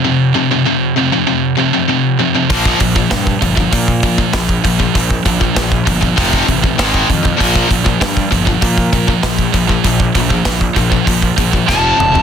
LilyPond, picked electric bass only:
\new Staff \with { instrumentName = "Picked electric bass" } { \clef bass \time 4/4 \key bes \lydian \tempo 4 = 98 r1 | bes,,8 bes,,8 g,8 g,,8 bes,4 bes,,8 bes,,8 | bes,,8 bes,,8 bes,,8 g,,8 f,,8 a,,8 gis,,8 f,8 | bes,,8 bes,,8 g,8 g,,8 bes,4 bes,,8 bes,,8 |
bes,,8 bes,,8 bes,,8 bes,,8 bes,,8 bes,,8 f,,8 e,,8 | }